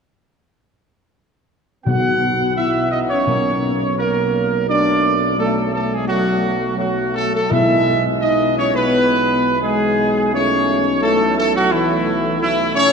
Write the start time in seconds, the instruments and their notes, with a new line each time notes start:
1.84 tuba B1, timpani B2, trombone section D#3 B3, french horn section F#4, trumpet section F#5
2.56 trombone section E3, french horn section E4, trumpet section E5
2.90 french horn section D#4, trumpet section D#5
3.09 french horn section C#4, trumpet section C#5
3.27 timpani B2, trombone section F#3 A#3
3.97 trombone section F#3 A#3, french horn section A#3, trumpet section A#4
4.68 trombone section F#3 A3, french horn section D4, trumpet section D5
5.38 trombone section F#3 A3, french horn section A3, trumpet section A4
5.73 french horn section A3, trumpet section A4
5.91 french horn section G#3, trumpet section G#4
6.07 trombone section F#3 A3, french horn section F#3, trumpet section F#4
6.76 trombone section F#3 A3, french horn section F#3, trumpet section F#4
7.15 french horn section A3, trumpet section A4
7.33 french horn section A3, trumpet section A4
7.50 tuba B1, timpani B2, trombone section E3 G#3, french horn section E4, trumpet section E5
8.21 french horn section D#4, trumpet section D#5
8.56 french horn section C#4, trumpet section C#5
8.74 french horn section B3, trumpet section B4
9.61 trombone section E3 G#3, french horn section G#3, trumpet section G#4
10.32 trombone section E3 A3, french horn section C#4, trumpet section C#5
11.02 trombone section E3 A3, french horn section A3, trumpet section A4
11.38 french horn section A3, trumpet section A4
11.54 french horn section F#3, trumpet section F#4
11.70 french horn section E3, trombone section E3 A3, trumpet section E4
12.39 french horn section E3, trombone section E3 A3, trumpet section E4
12.74 french horn section C#4, trumpet section C#5